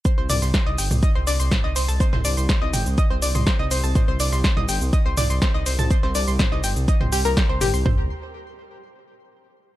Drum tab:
HH |--o--xo---o---ox|--o---o---o---o-|--o--xo---o---ox|--o---o---o---o-|
SH |x-xxx-xxx-xxx-xx|x-xxx-xxx-xxx-xx|x-xxx-xxx-xxx-xx|x-xxx-xxx-xxx-xx|
SD |---oo-----o-o---|-o--oo------o---|---oo-----o-o---|-o--oo------o---|
T2 |--o----o----o---|-o----o----o----|o----o----o----o|----o----o----o-|
FT |----------------|----------------|----------------|----------------|
BD |o---o---o---o---|o---o---o---o---|o---o---o---o---|o---o---o---o---|

HH |----------------|
SH |----------------|
SD |----------------|
T2 |----------------|
FT |o---------------|
BD |o---------------|